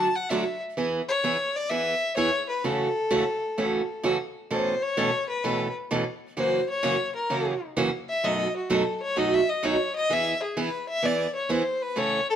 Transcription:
Already playing: A5
0.15 F#5
0.29 D3 F#3 A3 D4 F#4 E5
0.77 E3 B3 E4 G#4
1.09 C#5
1.24 E3 B3 E4 G#4
1.56 D5
1.70 E3 B3 E4 G#4 E5
2.17 E3 B3 E4 G#4 C#5
2.49 B4
2.64 A2 C#3 E3 A3 C#4 F#4 A4
3.10 A2 C#3 E3 A3 C#4 F#4
3.58 A2 C#3 E3 A3 C#4 F#4
4.03 A2 C#3 E3 A3 C#4 F#4
4.50 A2 B2 E3 A3 C#4 A4 C5
4.82 C#5
4.97 A2 B2 E3 A3 C#4 A4
5.29 B4
5.44 A2 B2 E3 A3 C#4 A4
5.91 A2 B2 E3 A3 C#4 A4
6.37 F#2 C#3 E3 A#3 C#4 F#4 C5
6.69 C#5
6.83 F#2 C#3 E3 A#3 C#4 F#4
7.16 A#4
7.30 F#2 C#3 E3 A#3 C#4 F#4
7.76 F#2 C#3 E3 A#3 C#4 F#4
8.09 E5
8.24 F#2 B2 F#3 A3 D#4 F#4 D#5
8.57 F#4
8.70 F#2 B2 F#3 A3 D#4 F#4 A4
9.03 C#5
9.16 F#2 B2 F#3 A3 D#4 F#4 D#5
9.34 E5
9.49 D#5
9.63 F#2 B2 F#3 A3 D#4 F#4 C#5
9.96 D#5
10.10 E3 B3 E4 G#4 E5
10.43 G#4
10.57 E3 B3 E4 G#4 B4
10.89 E5
11.03 E3 B3 E4 G#4 D5
11.35 C#5
11.49 E3 B3 E4 G#4 C5
11.82 B4
11.96 A2 C#3 E3 A3 C#4 A4 C#5
12.30 A4

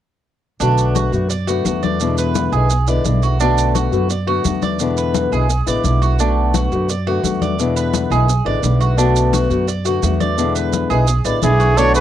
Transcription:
0.60 B1 B2 D3 A3 B3 D4 F#4, high conga, maracas
0.78 high conga, maracas
0.95 F#4, high conga, maracas
1.12 F#2 D3 A3 B3 F#4, high conga, maracas
1.30 D5, muted steel-string acoustic guitar stroke, high conga, maracas
1.47 D3 A3 B3 F#4, high conga, maracas
1.65 E2 D3 A3 B3 F#4, high conga, maracas
1.83 D5, high conga, maracas
2.00 B2 D3 G#3 B3 E4, high conga, maracas
2.18 B4, high conga, maracas
2.35 high conga, maracas
2.52 B1 D3 G#3 B3 E4 G#4, high conga, maracas
2.70 muted steel-string acoustic guitar stroke, high conga, maracas
2.87 D3 G#3 B3 E4 D5, high conga, maracas
3.04 B1 D3 G#3 B3 E4, high conga, maracas
3.23 F#4, maracas
3.40 B2 D3 A3 B3 D4 F#4, high conga, maracas
3.58 high conga, maracas
3.75 F#4, high conga, maracas
3.92 F#2 D3 A3 B3 F#4, high conga, maracas
4.10 D5, muted steel-string acoustic guitar stroke, high conga, maracas
4.27 D3 A3 B3 F#4, high conga
4.44 E2 D3 A3 B3 F#4, high conga, maracas
4.62 D5, high conga, maracas
4.80 B2 D3 G#3 B3 E4, high conga, maracas
4.97 B4, high conga, maracas
5.14 high conga, maracas
5.32 B1 D3 G#3 B3 E4 G#4, high conga, maracas
5.49 muted steel-string acoustic guitar stroke, high conga, maracas
5.66 A1 D3 G#3 B3 E4 D5, high conga, maracas
5.84 B1 D3 G#3 B3 E4, high conga, maracas
6.02 F#4, high conga, maracas
6.19 B2 D3 A3 B3 D4 F#4, high conga, maracas
6.37 high conga
6.54 F#4, high conga, maracas
6.72 F#2 D3 A3 B3 F#4, high conga, maracas
6.89 D5, muted steel-string acoustic guitar stroke, high conga, maracas
7.07 D3 A3 B3 F#4, high conga
7.23 E2 D3 A3 B3 F#4, high conga, maracas
7.42 D5, high conga, maracas
7.58 B2 D3 G#3 B3 E4, high conga, maracas
7.76 B4, high conga, maracas
7.94 high conga, maracas
8.10 B1 D3 G#3 B3 E4 G#4, high conga, maracas
8.28 muted steel-string acoustic guitar stroke, high conga, maracas
8.45 A1 D3 G#3 B3 E4 D5, high conga
8.62 B1 D3 G#3 B3 E4, high conga, maracas
8.80 F#4, high conga, maracas
8.97 B2 D3 A3 B3 D4 F#4, high conga, maracas
9.16 high conga, maracas
9.33 F#4, high conga, maracas
9.50 F#2 D3 A3 B3 F#4, high conga, maracas
9.68 D5, muted steel-string acoustic guitar stroke, high conga, maracas
9.85 D3 A3 B3 F#4, high conga, maracas
10.02 E2 D3 A3 B3 F#4, high conga, maracas
10.20 D5, high conga, maracas
10.37 B2 D3 G#3 B3 E4, maracas
10.55 B4, high conga, maracas
10.73 high conga, maracas
10.90 B1 D3 G#3 B3 E4 G#4, high conga, maracas
11.07 muted steel-string acoustic guitar stroke, high conga, maracas
11.25 A1 D3 G#3 B3 E4 D5, high conga, maracas
11.41 B1 D3 G#3 B3 E4 G#4, high conga, maracas
11.60 F#4, high conga, maracas
11.77 B2 D3 A3 B3 D4 F#4 A4 C#5, high conga, maracas
11.95 F#4 G#4 B4, high conga, maracas

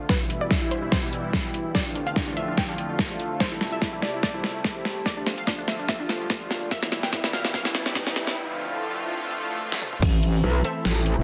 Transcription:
Already playing: D4 A4
0.09 B2 E3 G3 E4 B4, kick, snare
0.20 E4
0.30 E4, closed hi-hat
0.41 D5
0.46 B4
0.51 E4, kick, snare
0.62 E4
0.68 C5 G5, closed hi-hat
0.83 E4
0.92 C5, kick, snare
1.03 E4
1.13 closed hi-hat
1.33 kick, snare
1.54 closed hi-hat
1.75 F2 D3 F3 A3 F4 D5, kick, snare
1.86 D4
1.95 D4, closed hi-hat
2.06 F5 A5, closed hi-hat
2.16 D4 D5, kick, snare
2.27 D4
2.37 E5, closed hi-hat
2.48 D4
2.57 G5, kick, snare
2.69 D4
2.78 closed hi-hat
2.99 kick, snare
3.20 closed hi-hat
3.40 C3 G3 E4 G4 C5, kick, snare, riser
3.52 E4
3.56 C5
3.61 E4, snare, closed hi-hat
3.72 E5
3.82 E4, kick, snare
3.93 E4
4.02 D5, snare, closed hi-hat
4.14 E4
4.23 D5, kick, snare
4.34 E4
4.44 snare, closed hi-hat
4.64 kick, snare
4.85 snare, closed hi-hat
5.06 D3 F3 F4 D5, kick, snare
5.17 D4
5.27 D4, snare, closed hi-hat
5.38 F5, closed hi-hat
5.47 D4 D5, kick, snare
5.58 D4
5.68 E5, snare, closed hi-hat
5.79 D4
5.89 E5, kick, snare
6.00 D4
6.09 snare, closed hi-hat
6.30 kick, snare
6.51 snare, closed hi-hat
6.71 B2 E3 G3 E4 E5, kick, snare
6.83 E4, snare
6.92 E4 G5, snare, closed hi-hat
7.03 B4 G5, snare
7.13 E4, kick, snare
7.24 E4, snare
7.33 F5, snare, closed hi-hat
7.45 E4, snare
7.54 F5, kick, snare
7.65 E4, snare
7.75 snare, closed hi-hat
7.86 snare
7.95 kick, snare
8.07 snare
8.16 snare, closed hi-hat
8.27 snare
8.37 F2 D3 F3 A3 F4
9.20 swell
9.72 snare
9.82 mid tom
9.93 mid tom
10.02 A1 E3 A3 C4 E4, kick, crash
10.23 closed hi-hat
10.39 C5
10.44 B1
10.64 C4 A4 E5, closed hi-hat
10.85 A1, snare
11.06 closed hi-hat
11.17 E1

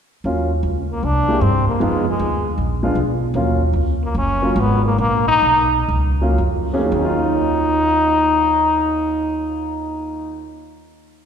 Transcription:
0.24 D#2 F#3 A#3 C#4 F4
0.63 C#2
0.92 A#3
1.03 C2 D4
1.29 G#3 A#3 E4 G4
1.41 G2 C4
1.66 A#3, muted upright bass stroke
1.80 F2 G#3 B3 D#4 F4
2.09 G#3
2.19 D#2
2.58 A#1
2.83 G#3 B3 D4 F4
2.95 B1
3.34 D#2 F#3 A#3 C#4 F4
3.73 C#2
4.04 A#3
4.14 F#1 C#4
4.42 F#3 A#3 C#4 F4
4.56 G#1
4.60 B3
4.86 A#3
4.98 A#1 A#3
5.28 D#4
5.42 B1
5.88 C#2
6.21 F#3 A#3 C#4 F4
6.38 F2
6.73 D#2 F#3 A#3 C#4 G#4
6.80 D#2
6.86 D#3
6.92 D#2 F#3 D#4
6.98 C#4
7.05 F4

